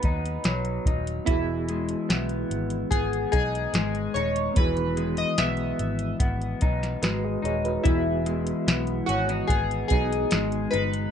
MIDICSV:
0, 0, Header, 1, 6, 480
1, 0, Start_track
1, 0, Key_signature, 4, "major"
1, 0, Tempo, 823045
1, 742, Time_signature, 4, 2, 24, 8
1, 6479, End_track
2, 0, Start_track
2, 0, Title_t, "Synth keys"
2, 0, Program_c, 0, 88
2, 0, Note_on_c, 0, 71, 87
2, 478, Note_off_c, 0, 71, 0
2, 736, Note_on_c, 0, 64, 82
2, 1695, Note_on_c, 0, 68, 81
2, 1727, Note_off_c, 0, 64, 0
2, 1929, Note_off_c, 0, 68, 0
2, 1936, Note_on_c, 0, 68, 87
2, 2415, Note_on_c, 0, 73, 85
2, 2433, Note_off_c, 0, 68, 0
2, 2663, Note_on_c, 0, 71, 89
2, 2666, Note_off_c, 0, 73, 0
2, 3021, Note_on_c, 0, 75, 90
2, 3033, Note_off_c, 0, 71, 0
2, 3142, Note_on_c, 0, 76, 74
2, 3145, Note_off_c, 0, 75, 0
2, 3598, Note_off_c, 0, 76, 0
2, 4569, Note_on_c, 0, 64, 78
2, 5285, Note_on_c, 0, 66, 88
2, 5316, Note_off_c, 0, 64, 0
2, 5525, Note_on_c, 0, 68, 81
2, 5540, Note_off_c, 0, 66, 0
2, 5756, Note_off_c, 0, 68, 0
2, 5763, Note_on_c, 0, 68, 83
2, 6244, Note_on_c, 0, 71, 92
2, 6265, Note_off_c, 0, 68, 0
2, 6479, Note_off_c, 0, 71, 0
2, 6479, End_track
3, 0, Start_track
3, 0, Title_t, "Reed electric piano"
3, 0, Program_c, 1, 4
3, 0, Control_c, 1, 64, 127
3, 0, Note_on_c, 1, 59, 50
3, 0, Note_on_c, 1, 63, 46
3, 0, Note_on_c, 1, 66, 48
3, 0, Note_on_c, 1, 68, 57
3, 711, Note_off_c, 1, 59, 0
3, 716, Note_off_c, 1, 63, 0
3, 720, Note_off_c, 1, 66, 0
3, 726, Note_off_c, 1, 68, 0
3, 728, Note_on_c, 1, 59, 53
3, 741, Note_on_c, 1, 75, 49
3, 750, Control_c, 1, 64, 0
3, 750, Note_on_c, 1, 66, 52
3, 759, Note_on_c, 1, 68, 66
3, 839, Control_c, 1, 64, 127
3, 2632, Note_off_c, 1, 59, 0
3, 2638, Note_off_c, 1, 75, 0
3, 2642, Note_off_c, 1, 66, 0
3, 2647, Note_off_c, 1, 68, 0
3, 2647, Note_on_c, 1, 59, 57
3, 2659, Note_on_c, 1, 51, 47
3, 2666, Note_on_c, 1, 66, 50
3, 2670, Control_c, 1, 64, 0
3, 2678, Note_on_c, 1, 68, 58
3, 2760, Control_c, 1, 64, 127
3, 4070, Note_off_c, 1, 59, 0
3, 4076, Note_off_c, 1, 51, 0
3, 4080, Note_off_c, 1, 66, 0
3, 4086, Note_off_c, 1, 68, 0
3, 4100, Note_on_c, 1, 71, 63
3, 4105, Note_on_c, 1, 66, 50
3, 4214, Note_off_c, 1, 71, 0
3, 4217, Note_off_c, 1, 66, 0
3, 4225, Note_on_c, 1, 75, 65
3, 4227, Note_on_c, 1, 68, 52
3, 4337, Note_off_c, 1, 75, 0
3, 4338, Note_off_c, 1, 68, 0
3, 4344, Note_on_c, 1, 73, 56
3, 4349, Note_on_c, 1, 68, 53
3, 4456, Note_off_c, 1, 73, 0
3, 4459, Note_off_c, 1, 68, 0
3, 4463, Note_on_c, 1, 71, 60
3, 4468, Note_on_c, 1, 66, 47
3, 4572, Note_on_c, 1, 59, 58
3, 4581, Note_on_c, 1, 75, 51
3, 4583, Note_off_c, 1, 66, 0
3, 4587, Control_c, 1, 64, 0
3, 4590, Note_on_c, 1, 66, 49
3, 4601, Note_on_c, 1, 68, 53
3, 4679, Control_c, 1, 64, 127
3, 4690, Note_off_c, 1, 71, 0
3, 5752, Note_off_c, 1, 59, 0
3, 5757, Note_off_c, 1, 75, 0
3, 5761, Note_off_c, 1, 66, 0
3, 5766, Note_off_c, 1, 68, 0
3, 5775, Note_on_c, 1, 59, 45
3, 5780, Note_on_c, 1, 63, 41
3, 5784, Note_on_c, 1, 66, 37
3, 5788, Note_on_c, 1, 68, 48
3, 6475, Note_off_c, 1, 59, 0
3, 6479, Note_off_c, 1, 63, 0
3, 6479, Note_off_c, 1, 66, 0
3, 6479, Note_off_c, 1, 68, 0
3, 6479, End_track
4, 0, Start_track
4, 0, Title_t, "Clean electric guitar"
4, 0, Program_c, 2, 27
4, 0, Note_on_c, 2, 44, 78
4, 0, Note_on_c, 2, 54, 55
4, 0, Note_on_c, 2, 59, 49
4, 29, Note_on_c, 2, 63, 62
4, 254, Note_off_c, 2, 54, 0
4, 261, Note_on_c, 2, 54, 57
4, 504, Note_off_c, 2, 63, 0
4, 507, Note_on_c, 2, 63, 55
4, 741, Note_on_c, 2, 52, 67
4, 744, Note_off_c, 2, 44, 0
4, 789, Note_off_c, 2, 54, 0
4, 987, Note_on_c, 2, 56, 53
4, 1217, Note_off_c, 2, 59, 0
4, 1220, Note_on_c, 2, 59, 58
4, 1696, Note_off_c, 2, 59, 0
4, 1699, Note_on_c, 2, 59, 53
4, 1934, Note_off_c, 2, 63, 0
4, 1937, Note_on_c, 2, 63, 60
4, 2177, Note_off_c, 2, 56, 0
4, 2180, Note_on_c, 2, 56, 59
4, 2425, Note_off_c, 2, 63, 0
4, 2427, Note_on_c, 2, 63, 53
4, 2666, Note_off_c, 2, 52, 0
4, 2669, Note_on_c, 2, 52, 72
4, 2895, Note_off_c, 2, 56, 0
4, 2898, Note_on_c, 2, 56, 54
4, 3137, Note_off_c, 2, 59, 0
4, 3139, Note_on_c, 2, 59, 61
4, 3612, Note_off_c, 2, 59, 0
4, 3615, Note_on_c, 2, 59, 54
4, 3859, Note_off_c, 2, 63, 0
4, 3861, Note_on_c, 2, 63, 62
4, 4094, Note_off_c, 2, 56, 0
4, 4096, Note_on_c, 2, 56, 53
4, 4328, Note_off_c, 2, 63, 0
4, 4331, Note_on_c, 2, 63, 61
4, 4576, Note_off_c, 2, 52, 0
4, 4578, Note_on_c, 2, 52, 74
4, 4817, Note_off_c, 2, 56, 0
4, 4819, Note_on_c, 2, 56, 55
4, 5057, Note_off_c, 2, 59, 0
4, 5059, Note_on_c, 2, 59, 55
4, 5299, Note_off_c, 2, 63, 0
4, 5301, Note_on_c, 2, 61, 67
4, 5421, Note_off_c, 2, 61, 0
4, 5421, Note_on_c, 2, 63, 49
4, 5536, Note_off_c, 2, 59, 0
4, 5538, Note_on_c, 2, 59, 59
4, 5778, Note_off_c, 2, 63, 0
4, 5785, Note_on_c, 2, 63, 54
4, 6017, Note_off_c, 2, 56, 0
4, 6019, Note_on_c, 2, 56, 61
4, 6251, Note_off_c, 2, 63, 0
4, 6253, Note_on_c, 2, 63, 52
4, 6479, Note_off_c, 2, 52, 0
4, 6479, Note_off_c, 2, 56, 0
4, 6479, Note_off_c, 2, 59, 0
4, 6479, Note_off_c, 2, 63, 0
4, 6479, End_track
5, 0, Start_track
5, 0, Title_t, "Picked electric bass"
5, 0, Program_c, 3, 34
5, 22, Note_on_c, 3, 39, 90
5, 214, Note_off_c, 3, 39, 0
5, 263, Note_on_c, 3, 35, 80
5, 455, Note_off_c, 3, 35, 0
5, 501, Note_on_c, 3, 27, 79
5, 693, Note_off_c, 3, 27, 0
5, 745, Note_on_c, 3, 28, 90
5, 1128, Note_off_c, 3, 28, 0
5, 1225, Note_on_c, 3, 35, 80
5, 1416, Note_off_c, 3, 35, 0
5, 1462, Note_on_c, 3, 32, 72
5, 1654, Note_off_c, 3, 32, 0
5, 1699, Note_on_c, 3, 32, 92
5, 1892, Note_off_c, 3, 32, 0
5, 1944, Note_on_c, 3, 35, 89
5, 2135, Note_off_c, 3, 35, 0
5, 2179, Note_on_c, 3, 32, 78
5, 2372, Note_off_c, 3, 32, 0
5, 2421, Note_on_c, 3, 27, 72
5, 2613, Note_off_c, 3, 27, 0
5, 2664, Note_on_c, 3, 28, 90
5, 3047, Note_off_c, 3, 28, 0
5, 3142, Note_on_c, 3, 35, 75
5, 3334, Note_off_c, 3, 35, 0
5, 3380, Note_on_c, 3, 32, 82
5, 3573, Note_off_c, 3, 32, 0
5, 3617, Note_on_c, 3, 32, 88
5, 3810, Note_off_c, 3, 32, 0
5, 3864, Note_on_c, 3, 35, 89
5, 4055, Note_off_c, 3, 35, 0
5, 4099, Note_on_c, 3, 32, 83
5, 4292, Note_off_c, 3, 32, 0
5, 4339, Note_on_c, 3, 27, 69
5, 4532, Note_off_c, 3, 27, 0
5, 4581, Note_on_c, 3, 28, 97
5, 4964, Note_off_c, 3, 28, 0
5, 5061, Note_on_c, 3, 35, 89
5, 5252, Note_off_c, 3, 35, 0
5, 5300, Note_on_c, 3, 32, 74
5, 5492, Note_off_c, 3, 32, 0
5, 5537, Note_on_c, 3, 32, 91
5, 5730, Note_off_c, 3, 32, 0
5, 5779, Note_on_c, 3, 35, 98
5, 5971, Note_off_c, 3, 35, 0
5, 6023, Note_on_c, 3, 32, 90
5, 6213, Note_off_c, 3, 32, 0
5, 6263, Note_on_c, 3, 31, 85
5, 6453, Note_off_c, 3, 31, 0
5, 6479, End_track
6, 0, Start_track
6, 0, Title_t, "Drums"
6, 16, Note_on_c, 9, 42, 62
6, 22, Note_on_c, 9, 36, 78
6, 74, Note_off_c, 9, 42, 0
6, 80, Note_off_c, 9, 36, 0
6, 149, Note_on_c, 9, 42, 46
6, 207, Note_off_c, 9, 42, 0
6, 257, Note_on_c, 9, 42, 75
6, 264, Note_on_c, 9, 38, 94
6, 315, Note_off_c, 9, 42, 0
6, 322, Note_off_c, 9, 38, 0
6, 378, Note_on_c, 9, 42, 34
6, 436, Note_off_c, 9, 42, 0
6, 500, Note_on_c, 9, 36, 71
6, 506, Note_on_c, 9, 42, 65
6, 558, Note_off_c, 9, 36, 0
6, 565, Note_off_c, 9, 42, 0
6, 625, Note_on_c, 9, 42, 49
6, 684, Note_off_c, 9, 42, 0
6, 741, Note_on_c, 9, 42, 88
6, 743, Note_on_c, 9, 36, 92
6, 800, Note_off_c, 9, 42, 0
6, 802, Note_off_c, 9, 36, 0
6, 983, Note_on_c, 9, 42, 58
6, 1041, Note_off_c, 9, 42, 0
6, 1100, Note_on_c, 9, 42, 48
6, 1158, Note_off_c, 9, 42, 0
6, 1224, Note_on_c, 9, 42, 86
6, 1226, Note_on_c, 9, 38, 101
6, 1283, Note_off_c, 9, 42, 0
6, 1284, Note_off_c, 9, 38, 0
6, 1337, Note_on_c, 9, 42, 31
6, 1396, Note_off_c, 9, 42, 0
6, 1465, Note_on_c, 9, 42, 68
6, 1523, Note_off_c, 9, 42, 0
6, 1576, Note_on_c, 9, 42, 49
6, 1634, Note_off_c, 9, 42, 0
6, 1698, Note_on_c, 9, 36, 69
6, 1702, Note_on_c, 9, 42, 87
6, 1757, Note_off_c, 9, 36, 0
6, 1760, Note_off_c, 9, 42, 0
6, 1826, Note_on_c, 9, 42, 34
6, 1885, Note_off_c, 9, 42, 0
6, 1942, Note_on_c, 9, 42, 58
6, 1944, Note_on_c, 9, 36, 76
6, 2000, Note_off_c, 9, 42, 0
6, 2002, Note_off_c, 9, 36, 0
6, 2071, Note_on_c, 9, 42, 43
6, 2129, Note_off_c, 9, 42, 0
6, 2180, Note_on_c, 9, 42, 78
6, 2187, Note_on_c, 9, 38, 101
6, 2238, Note_off_c, 9, 42, 0
6, 2245, Note_off_c, 9, 38, 0
6, 2302, Note_on_c, 9, 42, 33
6, 2360, Note_off_c, 9, 42, 0
6, 2426, Note_on_c, 9, 42, 59
6, 2484, Note_off_c, 9, 42, 0
6, 2542, Note_on_c, 9, 42, 49
6, 2600, Note_off_c, 9, 42, 0
6, 2660, Note_on_c, 9, 42, 76
6, 2663, Note_on_c, 9, 36, 105
6, 2718, Note_off_c, 9, 42, 0
6, 2721, Note_off_c, 9, 36, 0
6, 2780, Note_on_c, 9, 42, 33
6, 2839, Note_off_c, 9, 42, 0
6, 2899, Note_on_c, 9, 42, 61
6, 2958, Note_off_c, 9, 42, 0
6, 3016, Note_on_c, 9, 42, 47
6, 3074, Note_off_c, 9, 42, 0
6, 3137, Note_on_c, 9, 42, 97
6, 3138, Note_on_c, 9, 38, 105
6, 3195, Note_off_c, 9, 42, 0
6, 3197, Note_off_c, 9, 38, 0
6, 3248, Note_on_c, 9, 42, 26
6, 3306, Note_off_c, 9, 42, 0
6, 3379, Note_on_c, 9, 42, 68
6, 3437, Note_off_c, 9, 42, 0
6, 3492, Note_on_c, 9, 42, 49
6, 3551, Note_off_c, 9, 42, 0
6, 3616, Note_on_c, 9, 36, 78
6, 3616, Note_on_c, 9, 42, 91
6, 3674, Note_off_c, 9, 36, 0
6, 3675, Note_off_c, 9, 42, 0
6, 3741, Note_on_c, 9, 42, 35
6, 3800, Note_off_c, 9, 42, 0
6, 3855, Note_on_c, 9, 42, 64
6, 3861, Note_on_c, 9, 36, 85
6, 3913, Note_off_c, 9, 42, 0
6, 3920, Note_off_c, 9, 36, 0
6, 3983, Note_on_c, 9, 38, 31
6, 3986, Note_on_c, 9, 42, 45
6, 4041, Note_off_c, 9, 38, 0
6, 4044, Note_off_c, 9, 42, 0
6, 4098, Note_on_c, 9, 42, 79
6, 4105, Note_on_c, 9, 38, 94
6, 4156, Note_off_c, 9, 42, 0
6, 4163, Note_off_c, 9, 38, 0
6, 4346, Note_on_c, 9, 42, 62
6, 4404, Note_off_c, 9, 42, 0
6, 4461, Note_on_c, 9, 42, 44
6, 4520, Note_off_c, 9, 42, 0
6, 4581, Note_on_c, 9, 36, 104
6, 4581, Note_on_c, 9, 42, 80
6, 4639, Note_off_c, 9, 36, 0
6, 4639, Note_off_c, 9, 42, 0
6, 4819, Note_on_c, 9, 42, 61
6, 4877, Note_off_c, 9, 42, 0
6, 4937, Note_on_c, 9, 42, 51
6, 4996, Note_off_c, 9, 42, 0
6, 5062, Note_on_c, 9, 42, 91
6, 5063, Note_on_c, 9, 38, 111
6, 5120, Note_off_c, 9, 42, 0
6, 5122, Note_off_c, 9, 38, 0
6, 5173, Note_on_c, 9, 42, 31
6, 5232, Note_off_c, 9, 42, 0
6, 5301, Note_on_c, 9, 42, 75
6, 5360, Note_off_c, 9, 42, 0
6, 5418, Note_on_c, 9, 42, 45
6, 5476, Note_off_c, 9, 42, 0
6, 5537, Note_on_c, 9, 36, 82
6, 5542, Note_on_c, 9, 42, 84
6, 5595, Note_off_c, 9, 36, 0
6, 5600, Note_off_c, 9, 42, 0
6, 5664, Note_on_c, 9, 42, 36
6, 5722, Note_off_c, 9, 42, 0
6, 5775, Note_on_c, 9, 42, 60
6, 5779, Note_on_c, 9, 36, 77
6, 5833, Note_off_c, 9, 42, 0
6, 5838, Note_off_c, 9, 36, 0
6, 5905, Note_on_c, 9, 42, 46
6, 5963, Note_off_c, 9, 42, 0
6, 6012, Note_on_c, 9, 42, 86
6, 6019, Note_on_c, 9, 38, 95
6, 6070, Note_off_c, 9, 42, 0
6, 6077, Note_off_c, 9, 38, 0
6, 6136, Note_on_c, 9, 42, 32
6, 6194, Note_off_c, 9, 42, 0
6, 6260, Note_on_c, 9, 42, 63
6, 6319, Note_off_c, 9, 42, 0
6, 6377, Note_on_c, 9, 42, 51
6, 6436, Note_off_c, 9, 42, 0
6, 6479, End_track
0, 0, End_of_file